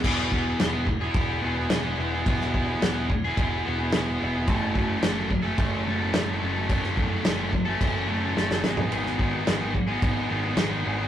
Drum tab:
CC |x---x---x---x---|x---x---x---x---|x---x---x---x---|x---x---x-------|
SD |-o--o-------o---|-o--o-------o---|----o-------o---|-o--o-------ooo-|
FT |----------------|----------------|----------------|---------------o|
BD |o-o---o-o-------|o-o---o-o-------|o-o---o-o-------|o-o---o-o-------|

CC |x---x---x---x---|
SD |-o--o-------o---|
FT |----------------|
BD |--o---o-o-------|